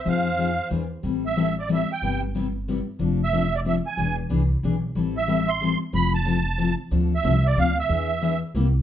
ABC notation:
X:1
M:3/4
L:1/8
Q:"Swing" 1/4=184
K:Fm
V:1 name="Accordion"
f4 z2 | [K:Am] z e2 d e g- | g z4 z | z e2 d e ^g- |
^g z4 z | z e2 c'2 z | b a4 z | z e2 d f e- |
e3 z3 |]
V:2 name="Violin"
c4 z2 | [K:Am] z6 | z6 | z6 |
z6 | z6 | z6 | z6 |
z6 |]
V:3 name="Steel-string acoustic guitar"
[F,CEA] z [F,CEA] z [=E,=B,=D^G] z | [K:Am] [E,G,CEA] z [E,G,CEA] z [E,G,CEA] z | [C,G,B,EG] z [C,G,B,EG] z [C,G,B,EG] z | [F,CDA] z [F,CDA] z [F,CDA] z |
[E,B,D^G] z [E,B,DG] z [E,B,DG] z | [E,G,CEA] z [E,G,CEA] z [E,G,CEA] z | [F,CEA] z [F,CEA] z [F,CEA] z | [D,F,CDA] z [D,F,CDA] z [D,F,CDA] z |
[E,B,D^G] z [E,B,DG] z [C,=G,_B,E=G] z |]
V:4 name="Upright bass" clef=bass
F,,4 =E,,2 | [K:Am] A,,,6 | G,,,6 | F,,,6 |
E,,,2 C,,2 B,,,2 | A,,,6 | F,,,6 | D,,2 C,,2 D,,2 |
E,,4 C,,2 |]